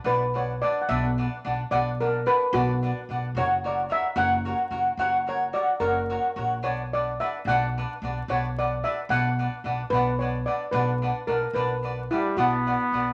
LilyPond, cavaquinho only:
\new Staff \with { instrumentName = "Cavaquinho" } { \time 6/8 \key b \minor \tempo 4. = 73 <d' b' d'' fis''>8 <d' b' d'' fis''>8 <d' b' d'' fis''>8 <d' b' d'' fis''>8 <d' b' d'' fis''>8 <d' b' d'' fis''>8 | <d' b' d'' fis''>8 <d' b' d'' fis''>8 <d' b' d'' fis''>8 <d' b' d'' fis''>8 <d' b' d'' fis''>8 <d' b' d'' fis''>8 | <fis' ais' cis'' fis''>8 <fis' ais' cis'' fis''>8 <fis' ais' cis'' fis''>8 <fis' ais' cis'' fis''>8 <fis' ais' cis'' fis''>8 <fis' ais' cis'' fis''>8 | <fis' ais' cis'' fis''>8 <fis' ais' cis'' fis''>8 <fis' ais' cis'' fis''>8 <fis' ais' cis'' fis''>8 <fis' ais' cis'' fis''>8 <fis' ais' cis'' fis''>8 |
<d' b' d'' fis''>8 <d' b' d'' fis''>8 <d' b' d'' fis''>8 <d' b' d'' fis''>8 <d' b' d'' fis''>8 <d' b' d'' fis''>8 | <d' b' d'' fis''>8 <d' b' d'' fis''>8 <d' b' d'' fis''>8 <d' b' d'' fis''>8 <d' b' d'' fis''>8 <d' b' d'' fis''>8 | <d' b' d'' fis''>8 <d' b' d'' fis''>8 <d' b' d'' fis''>8 <d' b' d'' fis''>8 <d' b' d'' fis''>8 <d' b' d'' fis''>8 | <d' b' d'' fis''>8 <d' b' d'' fis''>8 <d' b' d'' fis''>8 <d' b' d'' fis''>8 <d' b' d'' fis''>8 <d' b' d'' fis''>8 | }